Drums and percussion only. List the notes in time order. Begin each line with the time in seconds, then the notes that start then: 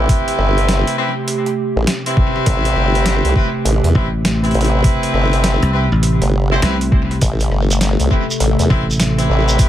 0.09 kick, closed hi-hat
0.28 closed hi-hat
0.39 cross-stick
0.58 closed hi-hat
0.69 snare, closed hi-hat
0.87 closed hi-hat
1.28 closed hi-hat
1.46 closed hi-hat
1.87 snare, closed hi-hat
2.06 closed hi-hat
2.17 kick
2.36 cross-stick
2.46 kick, closed hi-hat
2.65 closed hi-hat
2.76 cross-stick
2.95 closed hi-hat
3.06 snare, closed hi-hat
3.25 closed hi-hat
3.36 kick
3.66 closed hi-hat
3.84 closed hi-hat
3.95 kick
4.25 snare, closed hi-hat
4.44 closed hi-hat
4.51 closed hi-hat
4.54 closed hi-hat
4.61 closed hi-hat
4.64 closed hi-hat
4.84 kick, closed hi-hat
5.03 closed hi-hat
5.14 cross-stick
5.33 closed hi-hat
5.44 snare, closed hi-hat
5.63 closed hi-hat
6.03 closed hi-hat
6.22 cross-stick, closed hi-hat
6.62 snare, closed hi-hat
6.81 closed hi-hat
6.92 kick
7.11 cross-stick, closed hi-hat
7.21 kick, closed hi-hat, shekere
7.40 closed hi-hat, shekere
7.52 cross-stick
7.70 closed hi-hat, shekere
7.81 snare, closed hi-hat, shekere
8.00 closed hi-hat, shekere
8.11 kick
8.31 shekere
8.40 closed hi-hat, shekere
8.59 closed hi-hat, shekere
8.70 kick
8.91 shekere
9.00 snare, closed hi-hat, shekere
9.19 closed hi-hat, shekere
9.48 shekere
9.59 kick, closed hi-hat, shekere